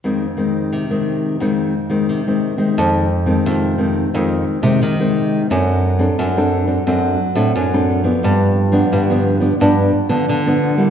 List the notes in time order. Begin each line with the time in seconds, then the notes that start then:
0.04 F2 D#3 G#3 C4
0.37 D#3 G#3 C4
0.72 C3
0.90 D#3 G#3 C4
1.40 F2 D#3 G#3 C4
1.90 D#3 G#3 C4
2.09 C3
2.27 D#3 G#3 C4
2.58 D#3 G#3 C4
2.78 F2
3.26 D#3 G#3 C4
3.46 F2 C3
3.78 D#3 G#3 C4
4.14 F2 D#3 G#3 C4
4.63 C3 D#3 G#3 C4
4.82 C3 D#3
5.00 D#3 G#3 C4
5.50 F#2 F#3 C4 D4 A4
5.99 C4 D4 A4
6.19 F#2 F#3
6.37 C4 D4 A4
6.67 C4 D4 A4
6.87 F#2 F#3 C4 D4 A4
7.35 A2 C4 D4 A4
7.55 F#2 F#3
7.73 C4 D4 A4
8.04 F3 B3 D4
8.23 G2
8.72 F3 B3 D4
8.92 G2 D3
9.10 F3 B3 D4
9.40 F3 B3 D4
9.60 G2 F3 B3 D4
10.09 D3 F3 B3 D4
10.28 D3
10.46 F3 B3 D4
10.77 G3 A#3 E4